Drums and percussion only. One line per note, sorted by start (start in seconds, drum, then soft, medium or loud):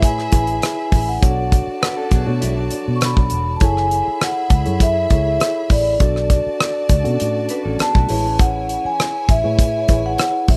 0.02 kick medium
0.02 closed hi-hat medium
0.19 cross-stick soft
0.32 kick medium
0.32 closed hi-hat medium
0.47 closed hi-hat soft
0.62 cross-stick medium
0.62 closed hi-hat medium
0.92 kick medium
0.92 open hi-hat medium
1.23 kick loud
1.23 closed hi-hat medium
1.52 kick medium
1.52 closed hi-hat medium
1.83 cross-stick loud
1.83 closed hi-hat medium
2.11 kick medium
2.11 closed hi-hat medium
2.42 closed hi-hat medium
2.71 closed hi-hat medium
3.01 cross-stick medium
3.01 closed hi-hat medium
3.17 kick medium
3.30 closed hi-hat medium
3.60 kick loud
3.60 closed hi-hat medium
3.77 cross-stick soft
3.91 closed hi-hat medium
4.21 cross-stick medium
4.21 closed hi-hat medium
4.50 kick medium
4.50 closed hi-hat medium
4.66 closed hi-hat soft
4.80 kick medium
4.80 closed hi-hat medium
5.10 kick medium
5.10 closed hi-hat medium
5.40 cross-stick medium
5.40 closed hi-hat medium
5.70 kick medium
5.70 open hi-hat medium
6.00 kick loud
6.00 closed hi-hat medium
6.16 cross-stick soft
6.30 kick medium
6.30 closed hi-hat medium
6.60 cross-stick medium
6.60 closed hi-hat medium
6.89 kick medium
6.89 closed hi-hat medium
7.05 closed hi-hat soft
7.20 closed hi-hat medium
7.49 closed hi-hat medium
7.79 cross-stick medium
7.79 closed hi-hat medium
7.95 kick medium
8.09 open hi-hat medium
8.39 kick loud
8.39 closed hi-hat medium
8.69 closed hi-hat medium
9.00 cross-stick medium
9.00 closed hi-hat medium
9.29 kick medium
9.29 closed hi-hat medium
9.59 kick medium
9.59 closed hi-hat medium
9.88 kick medium
9.88 closed hi-hat medium
10.18 cross-stick medium
10.18 closed hi-hat medium
10.48 kick medium
10.48 open hi-hat medium